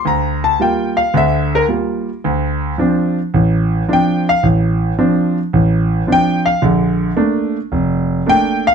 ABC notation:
X:1
M:4/4
L:1/8
Q:"Swing" 1/4=110
K:Dm
V:1 name="Grand piano"
b a g f e B z2 | z6 g f | z6 g f | z6 g f |]
V:2 name="Grand piano"
D,,2 [G,B,F] z [D,,D,]2 [G,B,F] z | D,,2 [F,CD] z A,,,2 [F,CD] z | A,,,2 [F,CD] z A,,,2 [F,CD] z | [B,,,D,]2 [A,B,D] z F,,,2 [A,B,D] z |]